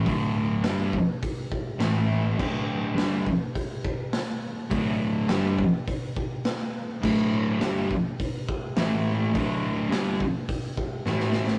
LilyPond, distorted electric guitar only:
\new Staff \with { instrumentName = "Distorted electric guitar" } { \clef bass \time 4/4 \key a \dorian \tempo 4 = 104 <d, a, d>4 <g, d g>8 r4. <a, e a>4 | <d, a, d>4 <g, d g>8 r2 r8 | <d, a, d>4 <g, d g>8 r2 r8 | <d, a, d>4 <g, d g>8 r4. <a, e a>4 |
<d, a, d>4 <g, d g>8 r4. <a, e a>4 | }